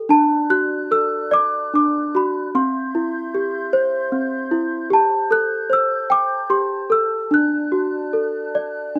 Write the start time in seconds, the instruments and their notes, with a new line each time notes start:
0.09 celesta D4 A5, flute section D5 A5 F#6
0.50 celesta F#4 F#6
0.91 celesta A4 E6
1.31 celesta D5 D6
1.74 celesta D4 D6
2.15 celesta F#4 B5
2.54 celesta C4 C6, flute section E5 C6 G6
2.95 celesta E4
3.35 celesta G4
3.73 celesta C5
4.12 celesta C4
4.51 celesta E4
4.90 celesta G4 A5, flute section C5 A5 G6
5.31 celesta A4 F#6
5.70 celesta C5 E6
6.10 celesta G5 D6
6.50 celesta G4 C6
6.90 celesta A4 E6
7.31 celesta D4 F#6, flute section D5 F#6
7.72 celesta F#4
8.13 celesta A4
8.55 celesta D5
8.96 celesta D4